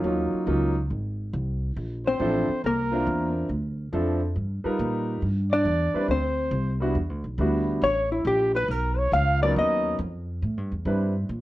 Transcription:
0.04 0.31 D#2 medium
0.04 0.45 F#3 medium
0.04 0.45 A#3 medium
0.04 0.46 C#4 medium
0.04 0.46 D#4 medium
0.04 0.47 F4 medium
0.33 muted upright bass stroke soft
0.47 0.89 C#2 medium
0.47 0.73 F#3 medium
0.47 0.73 A#3 medium
0.47 0.73 C#4 medium
0.47 0.74 D#4 medium
0.47 0.74 F4 medium
0.90 1.32 G#1 medium
1.33 1.75 C2 medium
1.76 2.19 A#1 medium
2.06 2.61 C4 medium
2.06 2.60 C5 medium
2.19 2.47 A1 medium
2.19 2.46 F3 medium
2.19 2.46 C4 medium
2.19 2.46 D4 medium
2.19 2.46 E4 medium
2.19 2.47 A4 medium
2.49 muted upright bass stroke soft
2.64 3.05 C2 medium
2.64 3.33 A#3 medium
2.64 3.32 A#4 medium
2.64 3.33 A#4 medium
2.91 3.47 C4 medium
2.91 3.47 D4 medium
2.91 3.47 E4 medium
2.91 3.47 F4 medium
2.91 3.48 A#4 medium
3.07 3.48 E2 medium
3.49 3.91 D2 medium
3.92 4.35 F2 medium
3.92 4.19 F3 medium
3.92 4.19 C4 medium
3.92 4.19 D4 medium
3.92 4.19 E4 medium
3.92 4.20 A4 medium
4.36 4.63 G2 medium
4.64 5.19 G3 medium
4.64 5.20 D#4 medium
4.64 5.20 F4 medium
4.64 5.20 A#4 medium
4.64 5.19 B4 medium
4.64 muted upright bass stroke soft
4.79 5.21 A#2 medium
5.22 5.64 G2 medium
5.51 6.06 D4 medium
5.51 6.05 D5 medium
5.51 6.06 D5 medium
5.65 5.92 E2 medium
5.94 6.07 G3 medium
5.94 6.08 C4 medium
5.94 6.08 D4 medium
5.94 6.08 E4 medium
5.94 6.08 B4 medium
5.94 muted upright bass stroke soft
6.08 6.51 D2 medium
6.08 6.78 C4 medium
6.08 6.77 C5 medium
6.08 6.78 C5 medium
6.51 6.94 C2 medium
6.80 6.94 G3 medium
6.80 6.94 B3 medium
6.80 6.94 D4 medium
6.80 6.95 E4 medium
6.80 6.95 F#4 medium
6.95 7.09 E2 medium
7.09 7.23 D2 medium
7.24 7.37 B1 medium
7.38 7.80 D2 medium
7.38 7.82 G3 medium
7.38 7.83 B3 medium
7.38 7.83 D4 medium
7.38 7.83 E4 medium
7.38 7.83 F#4 medium
7.82 8.24 A1 medium
7.82 8.10 C#5 medium
7.82 8.11 C#5 medium
8.12 8.26 E4 soft
8.12 8.25 E4 soft
8.25 8.67 A#1 medium
8.25 8.53 G4 medium
8.25 8.54 G4 medium
8.55 8.72 B4 medium
8.55 8.71 B4 medium
8.68 9.11 B1 medium
8.68 9.00 A#4 medium
8.68 8.98 A#4 medium
8.98 9.12 C#5 medium
9.12 9.54 C#2 medium
9.12 9.41 F5 medium
9.12 9.40 F5 medium
9.42 9.96 F#3 medium
9.42 9.97 B3 medium
9.42 9.97 C#4 medium
9.42 9.97 D#4 medium
9.42 9.97 A#4 medium
9.42 9.55 D5 medium
9.42 9.56 D5 medium
9.56 9.98 D#2 medium
9.56 9.97 D#5 medium
9.99 10.41 F2 medium
10.42 10.57 A2 medium
10.57 10.71 G2 medium
10.71 10.85 E2 medium
10.85 11.27 G2 medium
10.85 11.12 G3 medium
10.85 11.12 C4 medium
10.85 11.12 D4 medium
10.85 11.12 E4 medium
10.85 11.12 B4 medium
11.29 11.41 A#2 medium

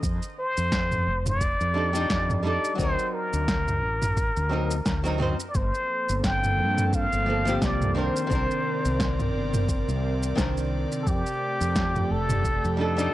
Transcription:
0.03 0.18 F2 medium
0.03 kick loud
0.03 shaker medium
0.23 shaker soft
0.39 1.29 C5 loud
0.57 1.08 F2 medium
0.57 shaker medium
0.72 kick loud
0.72 snare loud
0.72 shaker medium
0.92 mid tom medium
0.92 shaker soft
1.07 1.54 F1 medium
1.26 2.45 D5 loud
1.26 mid tom medium
1.26 shaker medium
1.41 kick loud
1.41 shaker medium
1.60 2.05 F2 medium
1.60 shaker soft
1.74 1.90 G3 medium
1.74 1.90 D4 medium
1.74 1.91 D#4 medium
1.74 1.91 A4 medium
1.93 2.40 G3 medium
1.93 2.41 D4 medium
1.93 2.41 D#4 medium
1.93 shaker medium
1.97 2.42 G4 loud
2.10 2.57 F2 medium
2.10 kick loud
2.10 snare medium
2.10 shaker medium
2.30 mid tom medium
2.30 shaker soft
2.43 2.75 G3 medium
2.43 2.75 D4 medium
2.43 2.76 D#4 medium
2.43 2.77 A4 medium
2.43 2.81 D5 loud
2.64 shaker medium
2.75 2.94 D2 medium
2.75 4.47 F#3 medium
2.75 4.48 C4 medium
2.75 kick loud
2.75 shaker medium
2.80 4.49 D#4 medium
2.80 4.50 A#4 medium
2.80 3.16 C5 loud
2.99 shaker soft
3.14 5.21 A#4 medium
3.33 3.82 D2 medium
3.33 shaker medium
3.48 kick loud
3.48 snare loud
3.48 shaker medium
3.68 mid tom medium
3.68 shaker soft
3.82 4.29 A1 medium
4.02 mid tom medium
4.02 shaker medium
4.17 kick loud
4.17 shaker medium
4.37 4.81 D2 medium
4.37 shaker soft
4.49 4.74 F#3 medium
4.49 4.74 C4 medium
4.49 4.75 D#4 medium
4.49 4.76 A#4 medium
4.71 shaker medium
4.86 5.33 D2 medium
4.86 kick loud
4.86 snare medium
4.86 shaker medium
5.04 5.16 F#3 medium
5.04 5.16 C4 medium
5.04 5.17 D#4 medium
5.04 5.18 A#4 loud
5.04 shaker soft
5.18 5.35 F#3 medium
5.18 5.35 C4 medium
5.18 5.36 D#4 medium
5.18 mid tom medium
5.22 5.37 C5 loud
5.40 shaker medium
5.50 5.57 D5 medium
5.55 5.70 G1 medium
5.55 7.94 F3 medium
5.55 7.94 A#3 medium
5.55 11.03 C4 medium
5.55 7.94 A4 medium
5.55 6.27 C5 loud
5.55 kick loud
5.55 shaker medium
5.74 shaker soft
6.09 6.60 G1 medium
6.09 shaker medium
6.24 6.96 G5 loud
6.24 kick loud
6.24 snare medium
6.24 shaker medium
6.44 mid tom soft
6.44 shaker soft
6.58 7.05 G2 medium
6.78 mid tom medium
6.78 shaker medium
6.93 7.66 F5 loud
6.93 kick loud
6.93 shaker medium
7.13 7.57 G1 medium
7.13 shaker soft
7.26 7.42 F3 medium
7.26 7.42 A#3 medium
7.26 7.43 C4 medium
7.26 7.43 A4 medium
7.45 7.92 F3 medium
7.45 7.92 A#3 medium
7.45 7.93 C4 medium
7.45 7.94 G4 loud
7.45 shaker medium
7.62 8.09 C2 medium
7.62 8.00 D5 medium
7.62 kick loud
7.62 snare medium
7.62 shaker medium
7.82 mid tom medium
7.82 shaker soft
7.95 13.14 C3 medium
7.95 8.26 D#3 medium
7.95 8.27 C4 medium
7.95 8.27 D4 medium
7.95 11.03 A#4 medium
7.95 8.28 A#4 medium
7.95 13.14 D5 medium
7.99 9.35 C5 medium
8.16 shaker medium
8.27 8.46 C2 medium
8.27 10.32 D#3 medium
8.27 10.34 C4 medium
8.27 kick loud
8.31 10.35 D4 medium
8.31 10.36 A#4 medium
8.31 shaker soft
8.51 shaker soft
8.85 9.34 C2 medium
8.85 shaker medium
9.00 kick loud
9.00 snare loud
9.00 shaker medium
9.19 mid tom medium
9.19 shaker soft
9.34 9.81 G1 medium
9.54 mid tom medium
9.54 shaker medium
9.69 kick medium
9.69 shaker medium
9.88 10.32 C2 medium
9.88 shaker soft
10.23 shaker medium
10.35 10.85 C2 medium
10.35 11.04 D#3 medium
10.35 11.04 C4 medium
10.35 11.05 D4 medium
10.35 11.06 A#4 medium
10.35 kick loud
10.35 snare medium
10.35 shaker medium
10.57 shaker soft
10.92 shaker medium
11.02 11.10 A4 medium
11.07 11.22 F2 medium
11.07 13.14 A3 medium
11.07 13.14 G4 medium
11.07 12.13 G4 medium
11.07 kick loud
11.07 shaker soft
11.26 shaker soft
11.61 12.12 F2 medium
11.61 shaker medium
11.76 kick loud
11.76 snare loud
11.76 shaker medium
11.96 mid tom medium
11.96 shaker soft
12.10 12.57 F1 medium
12.10 12.80 A4 medium
12.30 mid tom medium
12.30 shaker medium
12.45 kick medium
12.45 shaker medium
12.64 13.08 F2 medium
12.64 shaker soft
12.77 12.93 G3 medium
12.77 12.94 D4 medium
12.77 12.94 D#4 medium
12.77 13.14 A4 loud
12.81 12.95 A4 medium
12.97 13.14 G3 medium
12.97 13.14 D4 medium
12.97 13.14 D#4 medium
12.97 13.14 G4 loud
12.97 shaker medium

